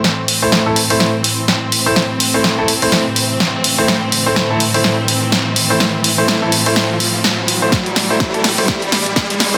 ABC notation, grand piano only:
X:1
M:4/4
L:1/16
Q:"Swing 16ths" 1/4=125
K:Am
V:1 name="Grand piano"
z3 [A,Ec]2 [A,EA] z [A,Ec]2 z6 [A,Ec] | z3 [A,Ec]2 [A,EA] z [A,Ec]2 z6 [A,Ec] | z3 [A,Ec]2 [A,EA] z [A,Ec]2 z6 [A,Ec] | z3 [A,Ec]2 [A,EA] z [A,Ec]2 z6 [A,Ec] |
z3 [A,Ec]2 [A,EA] z [A,Ec]2 z6 [A,Ec] |]